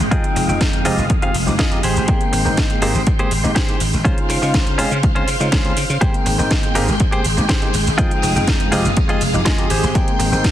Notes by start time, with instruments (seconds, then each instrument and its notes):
Already playing: string machine G#3
0.11 slap bass F2, tine electric piano F3 G#3 C4 D#4 G5, clean electric guitar F4 G#4 D#5, string machine F5 D#6, kick, closed hi-hat, tambourine, cabasa
0.24 closed hi-hat, tambourine
0.36 slap bass F1, muted clean electric guitar stroke, open hi-hat, tambourine, cabasa
0.48 slap bass F1, tine electric piano F3 G#3 C4 D#4 G5, muted clean electric guitar stroke, tambourine, cabasa
0.61 muted clean electric guitar stroke, kick, snare, closed hi-hat, cabasa
0.73 muted clean electric guitar stroke, closed hi-hat, tambourine
0.84 slap bass F1, tine electric piano F3 G#3 C4 D#4 G4, clean electric guitar F4 G#4 D#5, open hi-hat, tambourine, cabasa
0.98 slap bass F1, tambourine, cabasa
1.10 slap bass F2, kick, closed hi-hat, tambourine, cabasa
1.22 tine electric piano F3 G#3 C4 D#4 G4, clean electric guitar F4 G#4 F5, closed hi-hat, tambourine
1.34 slap bass F1, open hi-hat, tambourine, cabasa
1.46 slap bass F1, tine electric piano F3 G#3 C4 D#4 G4, muted clean electric guitar stroke, tambourine, cabasa
1.59 clean electric guitar F4 G#4 D#5, kick, snare, closed hi-hat, cabasa
1.71 tine electric piano F3 G#3 C4 D#4 G4, closed hi-hat
1.83 slap bass G#1, clean electric guitar G4 G#4 C5, string machine G5 C6, open hi-hat, tambourine, cabasa
1.96 slap bass G#1, cabasa
2.08 slap bass G#2, tine electric piano G#3 A#3 C4 D#4 G5, kick, closed hi-hat, tambourine, cabasa
2.21 closed hi-hat, tambourine
2.33 slap bass G#1, muted clean electric guitar stroke, open hi-hat, tambourine, cabasa
2.45 slap bass G#1, tine electric piano G#3 A#3 C4 D#4 G5, muted clean electric guitar stroke, tambourine, cabasa
2.57 slap bass G#2, muted clean electric guitar stroke, kick, snare, closed hi-hat, cabasa
2.70 muted clean electric guitar stroke, closed hi-hat, tambourine
2.82 slap bass G#1, tine electric piano G#3 A#3 C4 D#4 G4, clean electric guitar G4 G#4 C5, open hi-hat, tambourine, cabasa
2.94 slap bass G#1, tambourine, cabasa
3.07 kick, closed hi-hat, tambourine, cabasa
3.19 tine electric piano G#3 A#3 C4 D#4 G4, clean electric guitar G4 G#4 C5, closed hi-hat, tambourine
3.31 slap bass G#1, open hi-hat, tambourine, cabasa
3.43 slap bass G#1, tine electric piano G#3 A#3 C4 D#4 G4, muted clean electric guitar stroke, tambourine, cabasa
3.55 clean electric guitar G4 G#4 C5, kick, snare, closed hi-hat, tambourine, cabasa
3.67 tine electric piano G#3 A#3 C4 D#4 G4, closed hi-hat, tambourine
3.80 slap bass G#1, open hi-hat, tambourine, cabasa
3.93 slap bass G#1, tambourine, cabasa
4.04 slap bass C#2, tine electric piano G#3 C#4 D#4 F4 C5, clean electric guitar C#4 F4 C5, string machine C5 F5, kick, closed hi-hat, tambourine, cabasa
4.17 closed hi-hat, tambourine
4.29 slap bass C#3, muted clean electric guitar stroke, open hi-hat, tambourine, cabasa
4.41 slap bass C#3, tine electric piano G#3 C#4 D#4 F4 C5, muted clean electric guitar stroke, tambourine, cabasa
4.54 slap bass C#2, muted clean electric guitar stroke, kick, snare, closed hi-hat, cabasa
4.66 muted clean electric guitar stroke, closed hi-hat, tambourine
4.78 slap bass C#3, tine electric piano G#3 C4 C#4 D#4 F4, clean electric guitar C#4 F4 C5, open hi-hat, tambourine, cabasa
4.91 slap bass C#3, closed hi-hat, tambourine, cabasa
5.03 slap bass C#2, kick, closed hi-hat, tambourine, cabasa
5.15 tine electric piano G#3 C4 C#4 D#4 F4, clean electric guitar C#4 F4 C5, closed hi-hat, tambourine
5.28 slap bass C#3, open hi-hat, tambourine, cabasa
5.40 slap bass C#3, tine electric piano G#3 C4 C#4 D#4 F4, muted clean electric guitar stroke, tambourine, cabasa
5.52 slap bass C#2, clean electric guitar C#4 F4 C5, kick, snare, closed hi-hat, cabasa
5.64 tine electric piano G#3 C4 C#4 D#4 F4, closed hi-hat, tambourine
5.77 slap bass C#3, open hi-hat, tambourine, cabasa
5.89 slap bass C#3, tambourine, cabasa
6.01 slap bass G#2, tine electric piano G#3 A#3 C4 D#4 G5, string machine G#3 G5 C6, clean electric guitar G4 G#4 C5, kick, closed hi-hat, tambourine, cabasa
6.14 closed hi-hat, tambourine
6.26 slap bass G#1, muted clean electric guitar stroke, open hi-hat, tambourine, cabasa
6.38 slap bass G#1, tine electric piano G#3 A#3 C4 D#4 G5, muted clean electric guitar stroke, tambourine, cabasa
6.50 muted clean electric guitar stroke, kick, snare, closed hi-hat, cabasa
6.63 muted clean electric guitar stroke, closed hi-hat, tambourine
6.75 slap bass G#1, tine electric piano G#3 A#3 C4 D#4 G4, clean electric guitar G4 G#4 A#4, open hi-hat, tambourine, cabasa
6.88 slap bass G#1, tambourine, cabasa
7.00 slap bass G#2, kick, closed hi-hat, cabasa
7.12 tine electric piano G#3 A#3 C4 D#4 G4, clean electric guitar G4 G#4 C5, closed hi-hat, tambourine
7.25 slap bass G#1, open hi-hat, tambourine, cabasa
7.37 slap bass G#1, tine electric piano G#3 A#3 C4 D#4 G4, muted clean electric guitar stroke, tambourine, cabasa
7.49 slap bass G#2, clean electric guitar G4 G#4 C5, kick, snare, closed hi-hat, tambourine, cabasa
7.62 tine electric piano G#3 A#3 C4 D#4 G4, closed hi-hat, tambourine
7.73 slap bass G#1, open hi-hat, tambourine, cabasa
7.86 slap bass G#1, tambourine, cabasa
7.98 slap bass F2, tine electric piano F3 G#3 C4 D#4 G5, clean electric guitar F4 G#4 D#5, string machine F5 D#6, kick, closed hi-hat, tambourine, cabasa
8.11 closed hi-hat, tambourine
8.22 slap bass F1, muted clean electric guitar stroke, open hi-hat, tambourine, cabasa
8.35 slap bass F1, tine electric piano F3 G#3 C4 D#4 G5, muted clean electric guitar stroke, tambourine, cabasa
8.47 slap bass F2, muted clean electric guitar stroke, kick, snare, closed hi-hat, cabasa
8.60 muted clean electric guitar stroke, closed hi-hat, tambourine
8.72 slap bass F1, tine electric piano F3 G#3 C4 D#4 G4, clean electric guitar F4 G#4 D#5, open hi-hat, tambourine, cabasa
8.85 slap bass F1, tambourine, cabasa
8.97 slap bass F2, kick, closed hi-hat, tambourine, cabasa
9.09 tine electric piano F3 G#3 C4 D#4 G4, clean electric guitar F4 G#4 D#5, closed hi-hat, tambourine
9.21 slap bass F1, open hi-hat, tambourine, cabasa
9.33 slap bass F1, tine electric piano F3 G#3 C4 D#4 G4, muted clean electric guitar stroke, tambourine, cabasa
9.45 slap bass F2, clean electric guitar F4 G#4 D#5 G#5, kick, snare, closed hi-hat, cabasa
9.58 tine electric piano F3 G#3 C4 D#4 G4, closed hi-hat, tambourine
9.70 slap bass G#1, clean electric guitar G4 G#4 C5, string machine G5 C6, open hi-hat, tambourine, cabasa
9.83 slap bass G#1, tambourine, cabasa
9.94 tine electric piano G#3 A#3 C4 D#4 G5, kick, closed hi-hat, tambourine, cabasa
10.08 closed hi-hat, tambourine
10.19 slap bass G#1, muted clean electric guitar stroke, open hi-hat, tambourine, cabasa
10.31 slap bass G#1, tine electric piano G#3 A#3 C4 D#4 G5, muted clean electric guitar stroke, tambourine, cabasa
10.44 slap bass G#2, muted clean electric guitar stroke, kick, snare, closed hi-hat, cabasa